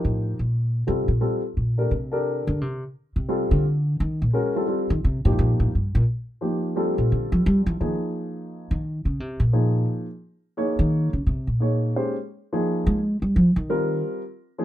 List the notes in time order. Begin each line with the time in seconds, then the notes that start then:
Already playing: F3 D#4 G4 A#4
0.05 A2
0.39 A#2
0.87 C3 G3 C4 F4 A4
1.08 A#2
1.21 G3 C4 F4 A4
1.57 A#2
1.78 A3 D4 G4 A#4
1.91 C3
2.12 D4 G4 A4 A#4
2.47 D3
2.61 C3
3.16 C3
3.29 G3 C4 F4 A4
3.51 D3
4.00 D#3
4.22 A#2
4.33 G#3 C#4 F#4 A#4
4.56 G3 C4 F4 A4
4.68 G3 C4 F4 A4
4.90 D#3
5.04 C3
5.25 A2 F3 A#3 D#4 G4
5.39 A#2
5.60 A2
5.75 G2
5.95 A#2
6.41 F3 A#3 D#4 G4
6.76 G3 C4 F4 A4
6.98 A#2
7.12 D3
7.32 F3
7.46 G3
7.66 E3
7.80 D#3 F3 A#3 D#4 G#4
8.71 D#3
9.05 C#3
9.20 C3
9.40 A#2
9.53 F3 A#3 D#4 G#4
10.57 A#3 D#4 G#4 C#5
10.79 D#3
11.13 C#3
11.27 C3
11.47 A#2
11.60 A#3 D#4 G#4 C#5
11.96 G#3 C#4 G4 C5
12.53 F3 A#3 D#4 G#4
12.87 G#3
13.22 G3
13.36 F3
13.56 D#3
13.69 G3 C4 F4 A#4
14.58 F3 A#3 D#4 G#4